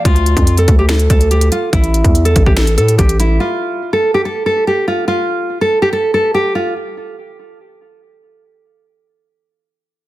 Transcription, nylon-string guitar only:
\new Staff \with { instrumentName = "Nylon-string guitar" } { \time 4/4 \key d \minor \tempo 4 = 143 f'4~ f'16 a'8 g'16 a'8 a'8 g'8 f'8 | e'4~ e'16 a'8 g'16 a'8 a'8 g'8 e'8 | f'4~ f'16 a'8 g'16 a'8 a'8 g'8 f'8 | f'4~ f'16 a'8 g'16 a'8 a'8 g'8 f'8 |
r1 | r1 | }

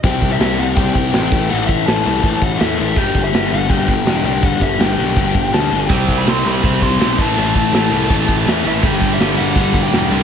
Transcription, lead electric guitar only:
\new Staff \with { instrumentName = "Lead electric guitar" } { \time 4/4 \key g \major \tempo 4 = 164 g''8. e''8. fis''8 g''8 g''4 g''8 | fis''8 e''8 a''4. fis''8 e''8 e''8 | g''8. e''8. fis''8 g''8 g''4 g''8 | fis''8 e''8 g''2 a''8 g''8~ |
g''8. b''16 c'''8 b''4 c'''4 a''8 | a''8 a''2~ a''8 e''8 e''8 | g''8. e''8. fis''4~ fis''16 g''8. g''8 | }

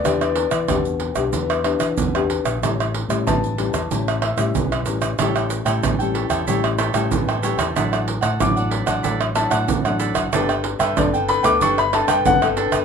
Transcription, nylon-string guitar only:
\new Staff \with { instrumentName = "Nylon-string guitar" } { \time 4/4 \key a \mixolydian \tempo 4 = 93 << { <b d' g'>8. r16 <b d' g'>8. <b d' g'>8. <b d' g'>8 r16 <b d' g'>8. | <g cis' e'>8. <g cis' e'>8. <g cis' e'>16 r16 <g cis' e'>8 r16 <g cis' e'>8. <g cis' e'>8 | <g cis' e'>8. <g cis' e'>8 <g cis' e'>8. <g cis' e'>8. <g cis' e'>8. <g cis' e'>8 | <fis d' e'>8. r16 <fis d' e'>8. <fis d' e'>8. <fis d' e'>8. <fis d' e'>8. |
<b d' a'>8. r16 <b d' a'>8 r16 <b d' a'>8. <b d' a'>8. <b d' a'>8. | } \\ { e4 b,4 e4 b,4 | a,4 e4 a,4 e4 | a,4 e4 a,4 e4 | a,4 a,4 a,4 a,4 |
g4 d4 g4 d4 | } >> }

